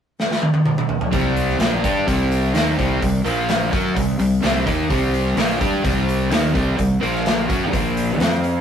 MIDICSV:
0, 0, Header, 1, 4, 480
1, 0, Start_track
1, 0, Key_signature, -3, "minor"
1, 0, Tempo, 471698
1, 1145, Time_signature, 4, 2, 24, 8
1, 8761, End_track
2, 0, Start_track
2, 0, Title_t, "Overdriven electric guitar"
2, 0, Program_c, 0, 29
2, 1141, Note_on_c, 0, 48, 97
2, 1148, Note_on_c, 0, 55, 98
2, 1150, Note_on_c, 0, 60, 111
2, 1617, Note_off_c, 0, 48, 0
2, 1620, Note_off_c, 0, 55, 0
2, 1621, Note_off_c, 0, 60, 0
2, 1621, Note_on_c, 0, 46, 85
2, 1627, Note_on_c, 0, 53, 94
2, 1631, Note_on_c, 0, 58, 94
2, 1857, Note_off_c, 0, 46, 0
2, 1860, Note_off_c, 0, 53, 0
2, 1861, Note_off_c, 0, 58, 0
2, 1872, Note_on_c, 0, 55, 80
2, 1879, Note_on_c, 0, 62, 101
2, 1879, Note_on_c, 0, 67, 97
2, 2099, Note_off_c, 0, 55, 0
2, 2106, Note_off_c, 0, 62, 0
2, 2106, Note_off_c, 0, 67, 0
2, 2106, Note_on_c, 0, 48, 98
2, 2111, Note_on_c, 0, 55, 104
2, 2114, Note_on_c, 0, 60, 116
2, 2580, Note_off_c, 0, 48, 0
2, 2582, Note_off_c, 0, 55, 0
2, 2584, Note_off_c, 0, 60, 0
2, 2585, Note_on_c, 0, 51, 96
2, 2589, Note_on_c, 0, 58, 91
2, 2595, Note_on_c, 0, 63, 95
2, 2819, Note_off_c, 0, 51, 0
2, 2821, Note_off_c, 0, 58, 0
2, 2824, Note_off_c, 0, 63, 0
2, 2827, Note_on_c, 0, 48, 86
2, 2835, Note_on_c, 0, 55, 94
2, 2835, Note_on_c, 0, 60, 93
2, 3056, Note_off_c, 0, 48, 0
2, 3060, Note_off_c, 0, 55, 0
2, 3065, Note_off_c, 0, 60, 0
2, 3068, Note_on_c, 0, 48, 64
2, 3073, Note_on_c, 0, 55, 72
2, 3260, Note_off_c, 0, 48, 0
2, 3262, Note_off_c, 0, 55, 0
2, 3305, Note_on_c, 0, 46, 77
2, 3306, Note_on_c, 0, 53, 87
2, 3312, Note_on_c, 0, 58, 97
2, 3778, Note_off_c, 0, 46, 0
2, 3778, Note_off_c, 0, 53, 0
2, 3782, Note_on_c, 0, 54, 89
2, 3782, Note_on_c, 0, 61, 97
2, 3783, Note_off_c, 0, 58, 0
2, 3787, Note_on_c, 0, 66, 104
2, 4018, Note_off_c, 0, 54, 0
2, 4018, Note_off_c, 0, 61, 0
2, 4021, Note_off_c, 0, 66, 0
2, 4022, Note_on_c, 0, 48, 64
2, 4026, Note_on_c, 0, 55, 75
2, 4218, Note_off_c, 0, 48, 0
2, 4220, Note_off_c, 0, 55, 0
2, 4264, Note_on_c, 0, 48, 64
2, 4270, Note_on_c, 0, 55, 64
2, 4458, Note_off_c, 0, 48, 0
2, 4461, Note_off_c, 0, 55, 0
2, 4500, Note_on_c, 0, 48, 92
2, 4506, Note_on_c, 0, 55, 90
2, 4507, Note_on_c, 0, 60, 101
2, 4737, Note_off_c, 0, 48, 0
2, 4740, Note_off_c, 0, 55, 0
2, 4741, Note_off_c, 0, 60, 0
2, 4742, Note_on_c, 0, 51, 89
2, 4748, Note_on_c, 0, 58, 85
2, 4750, Note_on_c, 0, 63, 103
2, 4978, Note_off_c, 0, 51, 0
2, 4979, Note_off_c, 0, 58, 0
2, 4982, Note_off_c, 0, 63, 0
2, 4983, Note_on_c, 0, 48, 102
2, 4983, Note_on_c, 0, 55, 106
2, 4992, Note_on_c, 0, 60, 115
2, 5458, Note_off_c, 0, 48, 0
2, 5458, Note_off_c, 0, 55, 0
2, 5462, Note_on_c, 0, 46, 90
2, 5463, Note_off_c, 0, 60, 0
2, 5465, Note_on_c, 0, 53, 95
2, 5472, Note_on_c, 0, 58, 94
2, 5698, Note_off_c, 0, 46, 0
2, 5699, Note_off_c, 0, 53, 0
2, 5703, Note_off_c, 0, 58, 0
2, 5706, Note_on_c, 0, 55, 87
2, 5709, Note_on_c, 0, 62, 105
2, 5710, Note_on_c, 0, 67, 100
2, 5928, Note_off_c, 0, 55, 0
2, 5938, Note_on_c, 0, 48, 94
2, 5940, Note_on_c, 0, 55, 105
2, 5941, Note_off_c, 0, 62, 0
2, 5941, Note_off_c, 0, 67, 0
2, 5946, Note_on_c, 0, 60, 106
2, 6414, Note_off_c, 0, 48, 0
2, 6416, Note_off_c, 0, 55, 0
2, 6419, Note_off_c, 0, 60, 0
2, 6419, Note_on_c, 0, 51, 80
2, 6425, Note_on_c, 0, 58, 88
2, 6427, Note_on_c, 0, 63, 91
2, 6647, Note_off_c, 0, 51, 0
2, 6651, Note_on_c, 0, 48, 98
2, 6653, Note_off_c, 0, 58, 0
2, 6655, Note_off_c, 0, 63, 0
2, 6657, Note_on_c, 0, 55, 92
2, 6659, Note_on_c, 0, 60, 93
2, 6876, Note_off_c, 0, 48, 0
2, 6881, Note_off_c, 0, 55, 0
2, 6888, Note_on_c, 0, 48, 68
2, 6893, Note_on_c, 0, 55, 71
2, 6895, Note_off_c, 0, 60, 0
2, 7089, Note_off_c, 0, 48, 0
2, 7091, Note_off_c, 0, 55, 0
2, 7127, Note_on_c, 0, 46, 96
2, 7132, Note_on_c, 0, 53, 87
2, 7138, Note_on_c, 0, 58, 88
2, 7608, Note_off_c, 0, 46, 0
2, 7611, Note_off_c, 0, 53, 0
2, 7613, Note_off_c, 0, 58, 0
2, 7613, Note_on_c, 0, 54, 85
2, 7618, Note_on_c, 0, 61, 86
2, 7621, Note_on_c, 0, 66, 96
2, 7858, Note_off_c, 0, 54, 0
2, 7858, Note_on_c, 0, 46, 91
2, 7861, Note_off_c, 0, 61, 0
2, 7861, Note_on_c, 0, 53, 100
2, 7866, Note_off_c, 0, 66, 0
2, 7866, Note_on_c, 0, 58, 112
2, 8332, Note_off_c, 0, 46, 0
2, 8332, Note_off_c, 0, 53, 0
2, 8332, Note_on_c, 0, 53, 93
2, 8335, Note_on_c, 0, 60, 98
2, 8337, Note_off_c, 0, 58, 0
2, 8337, Note_on_c, 0, 65, 105
2, 8761, Note_off_c, 0, 53, 0
2, 8761, Note_off_c, 0, 60, 0
2, 8761, Note_off_c, 0, 65, 0
2, 8761, End_track
3, 0, Start_track
3, 0, Title_t, "Fingered electric bass"
3, 0, Program_c, 1, 33
3, 1151, Note_on_c, 1, 36, 82
3, 1595, Note_off_c, 1, 36, 0
3, 1624, Note_on_c, 1, 34, 87
3, 1848, Note_off_c, 1, 34, 0
3, 1876, Note_on_c, 1, 43, 83
3, 2095, Note_off_c, 1, 43, 0
3, 2113, Note_on_c, 1, 36, 98
3, 2557, Note_off_c, 1, 36, 0
3, 2591, Note_on_c, 1, 39, 96
3, 2813, Note_off_c, 1, 39, 0
3, 2841, Note_on_c, 1, 36, 96
3, 3058, Note_off_c, 1, 36, 0
3, 3078, Note_on_c, 1, 36, 79
3, 3297, Note_off_c, 1, 36, 0
3, 3311, Note_on_c, 1, 34, 92
3, 3756, Note_off_c, 1, 34, 0
3, 3796, Note_on_c, 1, 42, 85
3, 4016, Note_off_c, 1, 42, 0
3, 4035, Note_on_c, 1, 36, 81
3, 4255, Note_off_c, 1, 36, 0
3, 4270, Note_on_c, 1, 36, 83
3, 4493, Note_off_c, 1, 36, 0
3, 4508, Note_on_c, 1, 36, 93
3, 4732, Note_off_c, 1, 36, 0
3, 4752, Note_on_c, 1, 39, 104
3, 4974, Note_off_c, 1, 39, 0
3, 4994, Note_on_c, 1, 36, 82
3, 5438, Note_off_c, 1, 36, 0
3, 5464, Note_on_c, 1, 34, 89
3, 5689, Note_off_c, 1, 34, 0
3, 5712, Note_on_c, 1, 43, 92
3, 5933, Note_off_c, 1, 43, 0
3, 5952, Note_on_c, 1, 36, 101
3, 6396, Note_off_c, 1, 36, 0
3, 6419, Note_on_c, 1, 39, 96
3, 6645, Note_off_c, 1, 39, 0
3, 6669, Note_on_c, 1, 36, 98
3, 6891, Note_off_c, 1, 36, 0
3, 6910, Note_on_c, 1, 36, 71
3, 7131, Note_off_c, 1, 36, 0
3, 7147, Note_on_c, 1, 34, 90
3, 7592, Note_off_c, 1, 34, 0
3, 7635, Note_on_c, 1, 42, 84
3, 7852, Note_off_c, 1, 42, 0
3, 7873, Note_on_c, 1, 34, 99
3, 8313, Note_off_c, 1, 34, 0
3, 8346, Note_on_c, 1, 41, 95
3, 8761, Note_off_c, 1, 41, 0
3, 8761, End_track
4, 0, Start_track
4, 0, Title_t, "Drums"
4, 200, Note_on_c, 9, 38, 73
4, 302, Note_off_c, 9, 38, 0
4, 319, Note_on_c, 9, 38, 78
4, 420, Note_off_c, 9, 38, 0
4, 427, Note_on_c, 9, 48, 83
4, 529, Note_off_c, 9, 48, 0
4, 547, Note_on_c, 9, 48, 80
4, 649, Note_off_c, 9, 48, 0
4, 667, Note_on_c, 9, 47, 94
4, 769, Note_off_c, 9, 47, 0
4, 794, Note_on_c, 9, 47, 95
4, 896, Note_off_c, 9, 47, 0
4, 905, Note_on_c, 9, 43, 79
4, 1007, Note_off_c, 9, 43, 0
4, 1029, Note_on_c, 9, 43, 93
4, 1130, Note_off_c, 9, 43, 0
4, 1146, Note_on_c, 9, 46, 79
4, 1148, Note_on_c, 9, 36, 98
4, 1248, Note_off_c, 9, 46, 0
4, 1250, Note_off_c, 9, 36, 0
4, 1390, Note_on_c, 9, 46, 59
4, 1491, Note_off_c, 9, 46, 0
4, 1522, Note_on_c, 9, 38, 31
4, 1624, Note_off_c, 9, 38, 0
4, 1627, Note_on_c, 9, 46, 84
4, 1638, Note_on_c, 9, 38, 117
4, 1729, Note_off_c, 9, 46, 0
4, 1739, Note_off_c, 9, 38, 0
4, 1873, Note_on_c, 9, 36, 105
4, 1873, Note_on_c, 9, 46, 66
4, 1974, Note_off_c, 9, 46, 0
4, 1975, Note_off_c, 9, 36, 0
4, 2114, Note_on_c, 9, 36, 102
4, 2115, Note_on_c, 9, 46, 82
4, 2216, Note_off_c, 9, 36, 0
4, 2217, Note_off_c, 9, 46, 0
4, 2358, Note_on_c, 9, 46, 64
4, 2459, Note_off_c, 9, 46, 0
4, 2594, Note_on_c, 9, 46, 83
4, 2604, Note_on_c, 9, 38, 115
4, 2696, Note_off_c, 9, 46, 0
4, 2706, Note_off_c, 9, 38, 0
4, 2836, Note_on_c, 9, 36, 95
4, 2837, Note_on_c, 9, 46, 54
4, 2938, Note_off_c, 9, 36, 0
4, 2939, Note_off_c, 9, 46, 0
4, 3077, Note_on_c, 9, 46, 84
4, 3078, Note_on_c, 9, 36, 93
4, 3179, Note_off_c, 9, 36, 0
4, 3179, Note_off_c, 9, 46, 0
4, 3315, Note_on_c, 9, 46, 62
4, 3417, Note_off_c, 9, 46, 0
4, 3549, Note_on_c, 9, 46, 81
4, 3559, Note_on_c, 9, 38, 107
4, 3651, Note_off_c, 9, 46, 0
4, 3661, Note_off_c, 9, 38, 0
4, 3795, Note_on_c, 9, 36, 103
4, 3795, Note_on_c, 9, 46, 59
4, 3896, Note_off_c, 9, 36, 0
4, 3896, Note_off_c, 9, 46, 0
4, 4035, Note_on_c, 9, 36, 93
4, 4036, Note_on_c, 9, 46, 80
4, 4137, Note_off_c, 9, 36, 0
4, 4137, Note_off_c, 9, 46, 0
4, 4269, Note_on_c, 9, 46, 64
4, 4371, Note_off_c, 9, 46, 0
4, 4509, Note_on_c, 9, 46, 73
4, 4519, Note_on_c, 9, 38, 117
4, 4611, Note_off_c, 9, 46, 0
4, 4621, Note_off_c, 9, 38, 0
4, 4750, Note_on_c, 9, 46, 52
4, 4751, Note_on_c, 9, 36, 98
4, 4852, Note_off_c, 9, 46, 0
4, 4853, Note_off_c, 9, 36, 0
4, 4989, Note_on_c, 9, 46, 72
4, 4990, Note_on_c, 9, 36, 105
4, 5091, Note_off_c, 9, 46, 0
4, 5092, Note_off_c, 9, 36, 0
4, 5230, Note_on_c, 9, 46, 61
4, 5332, Note_off_c, 9, 46, 0
4, 5466, Note_on_c, 9, 46, 77
4, 5477, Note_on_c, 9, 38, 116
4, 5568, Note_off_c, 9, 46, 0
4, 5578, Note_off_c, 9, 38, 0
4, 5710, Note_on_c, 9, 36, 112
4, 5710, Note_on_c, 9, 46, 58
4, 5812, Note_off_c, 9, 36, 0
4, 5812, Note_off_c, 9, 46, 0
4, 5949, Note_on_c, 9, 36, 108
4, 5950, Note_on_c, 9, 46, 83
4, 6051, Note_off_c, 9, 36, 0
4, 6052, Note_off_c, 9, 46, 0
4, 6195, Note_on_c, 9, 46, 67
4, 6297, Note_off_c, 9, 46, 0
4, 6427, Note_on_c, 9, 46, 87
4, 6437, Note_on_c, 9, 38, 109
4, 6529, Note_off_c, 9, 46, 0
4, 6539, Note_off_c, 9, 38, 0
4, 6667, Note_on_c, 9, 46, 54
4, 6669, Note_on_c, 9, 36, 98
4, 6769, Note_off_c, 9, 46, 0
4, 6770, Note_off_c, 9, 36, 0
4, 6907, Note_on_c, 9, 46, 79
4, 6908, Note_on_c, 9, 36, 84
4, 7009, Note_off_c, 9, 46, 0
4, 7010, Note_off_c, 9, 36, 0
4, 7152, Note_on_c, 9, 46, 60
4, 7254, Note_off_c, 9, 46, 0
4, 7279, Note_on_c, 9, 38, 31
4, 7381, Note_off_c, 9, 38, 0
4, 7388, Note_on_c, 9, 46, 73
4, 7399, Note_on_c, 9, 38, 109
4, 7490, Note_off_c, 9, 46, 0
4, 7500, Note_off_c, 9, 38, 0
4, 7628, Note_on_c, 9, 46, 65
4, 7629, Note_on_c, 9, 36, 107
4, 7730, Note_off_c, 9, 46, 0
4, 7731, Note_off_c, 9, 36, 0
4, 7870, Note_on_c, 9, 36, 110
4, 7872, Note_on_c, 9, 46, 82
4, 7971, Note_off_c, 9, 36, 0
4, 7974, Note_off_c, 9, 46, 0
4, 8112, Note_on_c, 9, 46, 63
4, 8214, Note_off_c, 9, 46, 0
4, 8347, Note_on_c, 9, 46, 79
4, 8358, Note_on_c, 9, 38, 117
4, 8449, Note_off_c, 9, 46, 0
4, 8459, Note_off_c, 9, 38, 0
4, 8587, Note_on_c, 9, 46, 51
4, 8688, Note_off_c, 9, 46, 0
4, 8761, End_track
0, 0, End_of_file